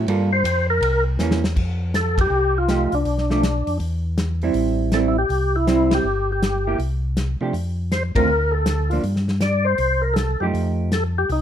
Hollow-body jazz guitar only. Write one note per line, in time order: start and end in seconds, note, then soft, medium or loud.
0.08 0.30 G3 medium
0.08 0.30 A#3 medium
0.08 0.30 F4 medium
0.08 0.30 A4 medium
1.20 1.41 E3 medium
1.20 1.42 A#3 medium
1.20 1.42 C#4 medium
2.68 2.90 F3 medium
2.68 2.90 A3 soft
2.68 2.91 D#4 medium
2.68 2.91 G4 medium
3.30 3.42 F3 medium
3.30 3.42 A3 medium
3.30 3.42 D4 medium
4.43 4.90 G3 medium
4.43 4.90 C4 medium
4.43 4.91 E4 medium
4.93 5.14 G3 medium
4.93 5.15 C4 medium
4.93 5.15 E4 medium
5.67 6.05 G3 medium
5.67 6.05 C4 medium
5.67 6.05 E4 medium
6.67 6.79 A#3 soft
6.67 6.79 E4 medium
6.67 6.79 G4 medium
7.41 7.53 F3 medium
7.41 7.53 A3 medium
7.41 7.53 D4 medium
7.41 7.54 G4 medium
8.16 8.28 D3 medium
8.16 8.28 A3 medium
8.16 8.28 C4 medium
8.16 8.28 F4 medium
8.92 9.03 F3 medium
8.92 9.04 A#3 medium
8.92 9.04 D4 medium
10.42 10.89 F3 medium
10.42 10.89 A3 medium
10.42 10.90 D#4 medium
10.42 10.90 G4 medium